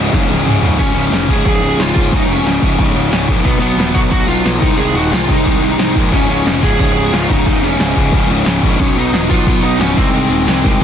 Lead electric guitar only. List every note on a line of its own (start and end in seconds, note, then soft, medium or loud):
0.79 0.93 C#4 medium
0.94 1.29 C#4 medium
1.30 1.46 G#4 medium
1.47 1.80 G#4 medium
1.81 2.14 F4 medium
2.15 2.30 D#4 medium
2.32 2.61 C#4 medium
3.44 3.58 B3 medium
3.59 3.94 B3 medium
3.94 3.99 F#4 medium
4.11 4.27 F#4 loud
4.28 4.59 F4 loud
4.59 4.78 D#4 medium
4.77 4.95 G#4 loud
4.96 5.11 F#4 medium
5.13 5.29 F4 medium
5.30 5.92 D#4 medium
6.14 6.29 C#4 medium
6.30 6.64 C#4 medium
6.62 6.79 G#4 medium
6.81 7.14 G#4 medium
7.13 7.30 F4 medium
7.30 7.64 D#4 medium
7.64 7.94 C#4 medium
8.80 8.98 C#4 medium
8.98 9.29 D#4 loud
9.29 9.62 F4 loud
9.63 9.80 D#4 medium
9.78 9.96 C#4 medium
9.97 10.84 C4 medium